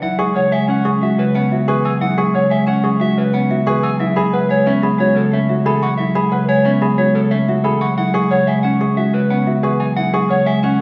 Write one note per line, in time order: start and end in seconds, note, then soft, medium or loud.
0.02 0.24 F#3 medium
0.02 0.24 E4 medium
0.02 0.24 F#5 medium
0.18 0.40 G#3 medium
0.18 0.40 G#4 medium
0.18 0.40 C#6 medium
0.35 0.57 C#3 medium
0.35 0.57 C#5 medium
0.35 0.57 F#5 medium
0.52 0.73 G#3 medium
0.52 0.69 E5 loud
0.52 0.74 G#5 medium
0.68 0.90 C#4 medium
0.68 0.90 F#5 medium
0.85 1.07 F#3 medium
0.85 1.07 G#4 medium
0.85 1.07 C#6 medium
1.02 1.23 G#3 medium
1.02 1.23 F#4 medium
1.02 1.24 E5 medium
1.18 1.40 C#3 medium
1.18 1.40 B4 medium
1.35 1.56 B3 medium
1.35 1.56 C#4 medium
1.35 1.56 F#5 medium
1.52 1.73 F#4 medium
1.52 1.73 E5 medium
1.68 1.89 E3 medium
1.68 1.89 G#4 medium
1.68 1.90 B4 medium
1.68 1.90 C#6 medium
1.85 2.00 F#3 medium
1.85 2.01 G#5 medium
1.85 2.06 E6 medium
2.01 2.23 F#3 medium
2.01 2.23 E4 medium
2.01 2.23 F#5 medium
2.17 2.39 G#3 medium
2.17 2.39 G#4 medium
2.17 2.39 C#6 medium
2.34 2.56 C#3 medium
2.34 2.56 C#5 medium
2.34 2.56 F#5 medium
2.51 2.72 G#3 medium
2.51 2.68 E5 medium
2.51 2.73 G#5 medium
2.67 2.89 C#4 medium
2.67 2.89 F#5 medium
2.84 3.05 F#3 medium
2.84 3.05 G#4 medium
2.84 3.06 C#6 medium
3.00 3.22 G#3 medium
3.00 3.22 F#4 medium
3.00 3.22 E5 medium
3.17 3.39 C#3 medium
3.17 3.39 B4 medium
3.33 3.55 B3 medium
3.33 3.55 C#4 medium
3.33 3.55 F#5 medium
3.50 3.72 F#4 medium
3.50 3.72 E5 medium
3.67 3.88 E3 medium
3.67 3.88 G#4 loud
3.67 3.89 B4 medium
3.67 3.88 C#6 medium
3.83 3.98 F#3 medium
3.83 4.00 G#5 medium
3.83 4.05 E6 medium
4.00 4.21 F#3 medium
4.00 4.22 E4 medium
4.00 4.22 E5 medium
4.16 4.38 G#3 medium
4.16 4.38 G#4 medium
4.16 4.38 B5 medium
4.33 4.55 C#3 medium
4.33 4.55 B4 medium
4.33 4.50 B4 medium
4.33 4.55 F#5 medium
4.49 4.71 G#3 medium
4.49 4.72 C#5 medium
4.49 4.71 G#5 medium
4.66 4.88 B3 medium
4.66 4.88 C#4 medium
4.66 4.88 E5 medium
4.82 5.04 F#3 medium
4.82 5.04 G#4 medium
4.82 5.05 B5 medium
4.98 5.21 G#3 medium
4.98 5.21 F#4 medium
4.98 5.21 C#5 medium
5.15 5.37 C#3 medium
5.15 5.38 A4 medium
5.32 5.54 A3 medium
5.32 5.54 C#4 medium
5.32 5.54 E5 medium
5.49 5.71 F#4 medium
5.49 5.71 E5 medium
5.65 5.87 E3 medium
5.65 5.87 G#4 medium
5.65 5.87 A4 medium
5.65 5.87 B5 medium
5.82 5.98 F#3 medium
5.82 5.97 F#5 medium
5.82 6.04 C#6 medium
5.98 6.20 F#3 medium
5.98 6.21 E4 medium
5.98 6.20 E5 medium
6.15 6.37 G#3 medium
6.15 6.37 G#4 medium
6.15 6.37 B5 medium
6.32 6.54 C#3 medium
6.32 6.48 B4 medium
6.32 6.54 B4 medium
6.32 6.53 F#5 medium
6.49 6.70 G#3 medium
6.49 6.70 C#5 loud
6.49 6.70 G#5 medium
6.65 6.87 B3 medium
6.65 6.87 C#4 medium
6.65 6.87 E5 medium
6.82 7.03 F#3 medium
6.82 7.03 G#4 medium
6.82 7.03 B5 medium
6.98 7.20 G#3 medium
6.98 7.20 F#4 medium
6.98 7.20 C#5 medium
7.15 7.37 C#3 medium
7.15 7.36 A4 medium
7.31 7.53 A3 medium
7.31 7.53 C#4 medium
7.31 7.53 E5 medium
7.48 7.70 F#4 medium
7.48 7.70 E5 medium
7.64 7.86 E3 medium
7.64 7.86 G#4 medium
7.64 7.86 A4 medium
7.64 7.86 B5 medium
7.81 7.97 F#3 medium
7.81 7.96 F#5 medium
7.81 8.03 C#6 medium
7.98 8.19 F#3 medium
7.98 8.19 E4 medium
7.98 8.19 F#5 medium
8.14 8.36 G#3 medium
8.14 8.36 G#4 loud
8.14 8.36 C#6 medium
8.31 8.53 C#3 medium
8.31 8.52 C#5 medium
8.31 8.53 C#5 medium
8.31 8.53 F#5 medium
8.47 8.69 G#3 medium
8.47 8.63 E5 medium
8.47 8.69 G#5 medium
8.63 8.86 C#4 medium
8.63 8.85 F#5 medium
8.81 9.02 G#4 medium
8.81 9.02 C#6 medium
8.97 9.19 G#3 medium
8.97 9.19 F#4 medium
8.97 9.19 E5 medium
9.14 9.35 C#3 medium
9.14 9.35 B4 medium
9.30 9.52 B3 medium
9.30 9.52 C#4 medium
9.30 9.52 F#5 medium
9.47 9.68 F#4 medium
9.47 9.69 E5 medium
9.63 9.85 E3 medium
9.63 9.85 G#4 medium
9.63 9.85 B4 medium
9.63 9.85 C#6 medium
9.80 9.95 F#3 medium
9.80 9.96 G#5 medium
9.96 10.18 F#3 medium
9.96 10.18 E4 medium
9.96 10.18 F#5 medium
10.13 10.35 G#3 medium
10.13 10.35 G#4 medium
10.13 10.35 C#6 medium
10.29 10.51 C#3 medium
10.29 10.52 C#5 medium
10.29 10.52 F#5 medium
10.46 10.68 G#3 medium
10.46 10.63 E5 loud
10.46 10.68 G#5 medium
10.63 10.81 C#4 medium
10.63 10.81 F#5 medium